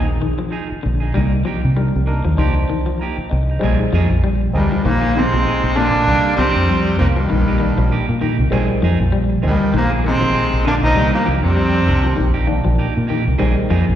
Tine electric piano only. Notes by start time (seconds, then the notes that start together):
Already playing: C4 D#4 G#4
1.76 D4 D#4 A#4
2.07 D4 D#4 A#4
2.37 D4 D#4 C5
2.99 A#5
3.16 G5
3.30 D#5
3.59 G#3 C4 D#4
4.53 C4 D#4 G#4
5.14 C4 D#4 F4
6.06 C3 A#3 D4
6.98 D#3 A#3 F4
7.60 D#3 A#3 D4
8.50 D#3 G#3 C4
9.42 D#3 G#3 C4
10.03 D#3 G#3 A#3
10.95 D#3 A#3 D4
11.86 D#3 A#3 D4
12.46 D#3 A#3 D4
13.38 D#3 G#3 C4